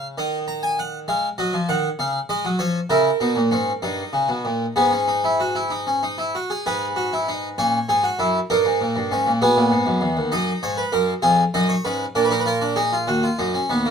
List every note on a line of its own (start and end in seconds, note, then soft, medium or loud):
0.00 0.14 C#3 medium
0.18 1.06 D#3 medium
0.18 0.37 D#5 medium
0.48 0.62 A#5 medium
0.63 0.77 G#5 medium
0.79 0.97 F#5 medium
1.08 1.27 G#3 medium
1.08 1.27 F5 medium
1.38 1.53 F#3 medium
1.38 1.57 D#5 medium
1.53 1.68 F3 medium
1.69 1.88 D#3 medium
1.69 1.88 F#5 medium
1.99 2.18 C#3 medium
1.99 2.18 F5 medium
2.29 2.44 G#3 medium
2.29 2.48 D#5 medium
2.45 2.59 F#3 medium
2.59 2.78 F3 medium
2.59 2.78 C#5 medium
2.90 3.09 C#3 medium
2.90 3.09 E4 medium
2.90 4.72 A#4 medium
3.20 3.35 B2 medium
3.20 3.40 D#4 medium
3.36 3.51 A#2 medium
3.51 3.70 G#2 medium
3.51 3.70 C#4 medium
3.82 4.02 G2 medium
3.82 4.73 D#4 medium
4.13 4.28 C#3 medium
4.28 4.44 B2 medium
4.45 4.64 A#2 medium
4.76 6.30 G#2 medium
4.76 4.91 B3 medium
4.76 6.31 G#4 medium
4.92 5.07 C#4 medium
5.08 5.23 D#4 medium
5.24 5.39 E4 medium
5.40 5.55 F#4 medium
5.55 5.71 E4 medium
5.70 5.86 D#4 medium
5.87 6.02 C#4 medium
6.03 6.18 D#4 medium
6.18 6.34 E4 medium
6.35 6.50 F#4 medium
6.50 6.65 G#4 medium
6.66 7.56 G#2 medium
6.66 6.85 G#4 medium
6.66 7.56 B4 medium
6.96 7.11 F#4 medium
7.13 7.27 E4 medium
7.28 7.47 D#4 medium
7.58 7.77 A#2 medium
7.58 7.77 C#4 medium
7.58 8.47 C#5 medium
7.89 8.07 G#2 medium
7.89 8.04 G#4 medium
8.03 8.18 F#4 medium
8.19 8.38 F#2 medium
8.19 8.38 E4 medium
8.50 8.65 G2 medium
8.50 9.09 D#4 medium
8.50 9.39 A#4 medium
8.65 8.80 G#2 medium
8.81 8.95 A#2 medium
8.96 9.10 G2 medium
9.11 9.26 G#2 medium
9.11 9.30 C#4 medium
9.27 9.41 A#2 medium
9.42 9.56 B2 medium
9.42 10.30 B3 medium
9.42 10.30 G#4 medium
9.56 9.71 A#2 medium
9.71 9.86 G#2 medium
9.86 10.01 F#2 medium
10.01 10.16 E2 medium
10.17 10.32 D#2 medium
10.32 10.51 F#2 medium
10.32 11.21 D#4 medium
10.32 10.51 D#5 loud
10.63 10.82 G#2 medium
10.63 10.77 C#5 medium
10.77 10.92 B4 medium
10.92 11.12 F#2 medium
10.92 11.12 A#4 medium
11.22 11.42 F2 medium
11.22 11.42 F4 medium
11.22 11.42 G#4 loud
11.54 11.73 F#2 medium
11.54 11.73 D#4 medium
11.54 11.69 D#5 loud
11.69 11.84 C#5 medium
11.85 12.04 G#2 medium
11.85 12.04 C#4 medium
11.85 12.04 B4 loud
12.15 13.05 A#2 medium
12.15 12.30 D4 medium
12.15 12.23 A#4 medium
12.25 12.32 B4 medium
12.31 12.46 D#4 medium
12.31 12.39 A#4 medium
12.40 12.48 B4 medium
12.46 12.61 F4 medium
12.46 12.76 A#4 loud
12.61 12.77 D4 medium
12.76 12.92 D#4 medium
12.76 12.95 G#4 loud
12.93 13.07 F4 medium
13.07 13.27 D#2 medium
13.07 13.23 F#4 medium
13.23 13.38 F4 medium
13.39 13.58 F#2 medium
13.39 13.54 D#4 medium
13.54 13.69 C#4 medium
13.70 13.89 D#2 medium
13.70 13.85 B3 medium
13.86 13.90 A#3 medium